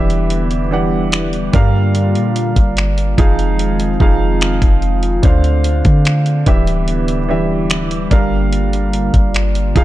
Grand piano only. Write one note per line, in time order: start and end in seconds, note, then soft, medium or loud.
0.00 0.60 E3 medium
0.00 0.60 D4 medium
0.00 0.61 G4 medium
0.00 0.61 E5 loud
0.71 1.53 E3 medium
0.71 1.52 D4 medium
0.71 1.54 G4 medium
0.71 1.55 F#5 medium
1.53 2.95 G3 medium
1.53 2.96 D4 medium
1.53 2.96 A#4 medium
1.53 2.96 F5 medium
3.18 3.89 F3 medium
3.18 3.89 D#4 medium
3.18 3.89 G#4 medium
3.18 3.90 F5 medium
4.00 5.06 F3 medium
4.00 5.07 D#4 medium
4.00 5.07 G#4 medium
4.00 5.07 F5 medium
5.23 6.46 D3 medium
5.23 6.46 D4 medium
5.23 6.47 C5 medium
5.23 6.48 F5 medium
6.46 7.17 E3 medium
6.46 7.18 D4 medium
6.46 7.18 G4 medium
6.46 7.19 E5 loud
7.29 8.11 E3 medium
7.29 8.10 D4 medium
7.29 8.12 G4 medium
7.29 8.12 E5 medium
8.11 9.53 G3 medium
8.11 9.53 D4 medium
8.11 9.53 A#4 medium
8.11 9.54 F5 medium
9.75 9.84 F3 medium
9.75 9.84 D#4 medium
9.75 9.84 G#4 medium
9.75 9.84 F5 loud